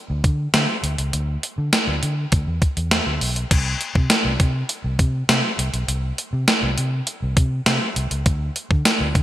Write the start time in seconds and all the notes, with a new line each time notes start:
0.10 D2
0.24 D3, kick, closed hi-hat
0.54 D3, snare, closed hi-hat, tambourine
0.83 D2, closed hi-hat
0.98 C#2, closed hi-hat
1.13 D2, closed hi-hat
1.43 closed hi-hat
1.58 D3
1.73 snare, closed hi-hat, tambourine
1.88 D2
2.03 D3, closed hi-hat
2.32 D2, kick, closed hi-hat
2.47 E2
2.62 kick, closed hi-hat
2.77 E2, closed hi-hat
2.91 snare, closed hi-hat, tambourine
3.07 D2
3.21 B1, open hi-hat
3.36 closed hi-hat
3.51 C2, kick, closed hi-hat, crash
3.81 closed hi-hat
3.95 C3, kick
4.10 snare, closed hi-hat, tambourine
4.25 C2
4.40 C3, kick, closed hi-hat
4.69 closed hi-hat
4.84 C2
4.99 C3, kick, closed hi-hat
5.29 C3, snare, closed hi-hat, tambourine
5.58 C2, closed hi-hat
5.74 B1, closed hi-hat
5.88 C2, closed hi-hat
6.18 closed hi-hat
6.33 C3
6.48 snare, closed hi-hat, tambourine
6.63 C2
6.78 C3, closed hi-hat
7.07 closed hi-hat
7.22 C2
7.37 C3, kick, closed hi-hat
7.66 C3, snare, closed hi-hat, tambourine
7.96 C2, closed hi-hat
8.11 C#2, closed hi-hat
8.26 D2, kick, closed hi-hat
8.56 closed hi-hat
8.71 D3, kick
8.85 snare, closed hi-hat, tambourine
9.00 D2
9.15 D3, kick, closed hi-hat